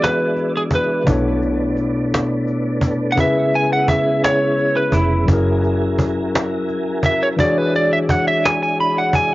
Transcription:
0.00 1.02 E3 medium
0.00 1.05 G#3 medium
0.00 1.02 B3 medium
0.00 1.03 D4 medium
0.00 1.05 D4 medium
0.00 1.03 E4 medium
0.00 1.04 F#4 medium
0.00 1.05 G#4 medium
0.00 0.52 B4 medium
0.00 1.05 D5 medium
0.00 cajon slap loud
0.37 cajon slap soft
0.57 0.62 G#4 medium
0.71 1.03 A#1 medium
0.71 cajon bass medium
0.75 1.06 B4 medium
1.04 3.18 B1 medium
1.04 3.12 B2 medium
1.04 3.13 B3 medium
1.04 3.14 D4 medium
1.04 cajon bass loud
1.08 3.16 A3 medium
1.08 5.25 B3 medium
1.08 3.16 D4 medium
1.08 3.15 E4 medium
1.08 3.15 A4 medium
1.08 3.16 C#5 medium
1.42 cajon slap soft
1.77 cajon slap soft
2.14 cajon slap loud
2.48 cajon slap soft
2.81 cajon bass medium
3.12 5.23 C#3 medium
3.12 3.18 F#5 medium
3.17 4.89 C#2 loud
3.17 5.26 C#3 medium
3.17 5.26 G#3 medium
3.17 5.24 C#4 soft
3.17 9.35 E4 medium
3.17 5.25 E4 medium
3.17 3.55 E5 medium
3.17 cajon bass medium
3.21 5.26 G#4 medium
3.21 5.27 B4 medium
3.53 3.72 G#5 medium
3.53 cajon slap soft
3.73 3.90 F#5 medium
3.88 4.24 E5 medium
3.88 cajon bass loud
4.24 4.78 C#5 medium
4.24 cajon slap loud
4.58 cajon slap soft
4.77 4.94 B4 medium
4.92 5.24 F1 medium
4.92 5.26 E4 medium
4.92 cajon bass medium
5.26 7.39 F#1 loud
5.26 7.33 F#3 medium
5.26 7.37 F#3 medium
5.26 7.34 C#4 medium
5.26 7.35 E4 medium
5.26 7.37 G#4 medium
5.26 7.36 A#4 medium
5.26 cajon bass medium
5.32 7.36 G#4 medium
5.32 7.37 A#4 medium
5.64 cajon slap soft
5.99 cajon bass loud
6.35 cajon slap loud
6.69 cajon slap soft
7.03 7.23 E5 medium
7.03 cajon bass medium
7.23 7.28 C#5 medium
7.36 9.35 E3 medium
7.36 9.35 G#3 medium
7.36 9.35 D4 medium
7.36 9.35 F#4 medium
7.36 7.58 D5 medium
7.36 cajon bass loud
7.42 9.35 G#4 medium
7.42 9.35 C#5 medium
7.58 7.75 B4 medium
7.74 7.91 D5 medium
7.74 cajon slap soft
7.93 7.98 E5 medium
8.09 8.27 F#5 medium
8.09 cajon bass loud
8.28 8.45 E5 medium
8.45 8.62 G#5 loud
8.45 cajon slap loud
8.63 8.80 G#5 loud
8.80 8.98 B5 loud
8.80 cajon slap soft
8.98 9.15 F#5 loud
9.13 9.33 G#5 loud
9.13 cajon bass medium

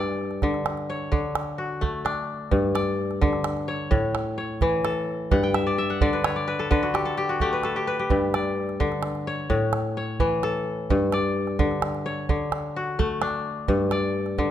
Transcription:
0.00 1.17 G2 medium
0.00 0.58 A4 medium
0.00 0.96 D5 medium
0.31 calabash click soft
0.42 1.10 D3 medium
0.42 calabash thump medium
0.42 calabash click soft
0.54 calabash click soft
0.66 calabash click medium
0.77 calabash click soft
0.90 2.04 C#5 medium
1.12 2.57 D3 medium
1.12 calabash thump medium
1.35 calabash click medium
1.58 2.57 F#4 medium
1.81 3.81 A3 medium
1.81 calabash thump medium
2.05 3.74 D4 medium
2.05 calabash click medium
2.51 3.97 G2 medium
2.51 calabash thump medium
2.75 3.74 D5 medium
2.75 calabash click medium
3.11 calabash click soft
3.21 3.97 D3 medium
3.21 calabash thump medium
3.21 calabash click soft
3.33 calabash click soft
3.44 calabash click medium
3.57 calabash click soft
3.68 4.37 C#5 medium
3.91 5.36 A2 medium
3.91 calabash thump medium
4.15 calabash click medium
4.38 5.52 C#5 medium
4.61 5.36 E3 medium
4.61 calabash thump medium
4.85 6.17 A4 medium
4.85 calabash click medium
5.31 6.76 G2 medium
5.31 5.90 F#5 medium
5.31 calabash thump medium
5.31 calabash click soft
5.43 5.96 G5 medium
5.43 calabash click soft
5.54 5.78 E5 medium
5.54 calabash click medium
5.67 6.01 D5 medium
5.78 6.82 E5 medium
5.78 calabash click soft
5.90 6.86 F#5 medium
5.90 calabash click soft
6.01 6.69 D3 medium
6.01 6.30 D5 medium
6.01 calabash thump medium
6.13 6.47 B4 medium
6.24 6.77 C#5 medium
6.24 calabash click medium
6.36 7.47 D5 medium
6.48 6.71 B4 medium
6.48 calabash click soft
6.59 7.05 A4 medium
6.59 calabash click soft
6.71 8.16 D3 medium
6.71 7.52 B4 medium
6.71 calabash thump medium
6.83 7.23 F#4 medium
6.83 calabash click soft
6.94 7.17 G4 medium
6.94 calabash click medium
7.05 7.64 A4 medium
7.05 calabash click soft
7.17 7.41 G4 medium
7.17 calabash click soft
7.29 7.82 F#4 medium
7.29 calabash click soft
7.40 9.41 A3 medium
7.40 7.76 G4 medium
7.40 calabash thump medium
7.53 7.87 B4 medium
7.63 8.96 A4 medium
7.63 calabash click soft
7.76 7.99 G4 medium
7.87 9.10 B4 medium
7.99 9.41 G4 medium
8.10 9.55 G2 medium
8.10 calabash thump medium
8.34 9.33 D5 medium
8.34 calabash click medium
8.69 calabash click soft
8.80 9.55 D3 medium
8.80 calabash thump medium
8.80 calabash click soft
8.92 calabash click soft
9.03 calabash click medium
9.15 calabash click soft
9.27 9.97 C#5 medium
9.50 10.95 A2 medium
9.50 calabash thump medium
9.73 calabash click medium
9.97 11.12 C#5 medium
10.20 10.95 E3 medium
10.20 calabash thump medium
10.43 11.75 A4 medium
10.43 calabash click medium
10.90 12.34 G2 medium
10.90 calabash thump medium
11.12 12.12 D5 medium
11.12 calabash click medium
11.47 calabash click soft
11.59 12.28 D3 medium
11.59 calabash thump medium
11.59 calabash click soft
11.71 calabash click soft
11.82 calabash click medium
11.95 calabash click soft
12.06 13.20 C#5 medium
12.29 13.74 D3 medium
12.29 calabash thump medium
12.52 calabash click medium
12.76 13.74 F#4 medium
12.99 14.51 A3 medium
12.99 calabash thump medium
13.22 14.51 D4 medium
13.22 calabash click medium
13.68 14.51 G2 medium
13.68 calabash thump medium
13.91 14.51 D5 medium
13.91 calabash click medium
14.26 calabash click soft
14.38 14.51 D3 medium
14.38 calabash thump medium
14.38 calabash click soft

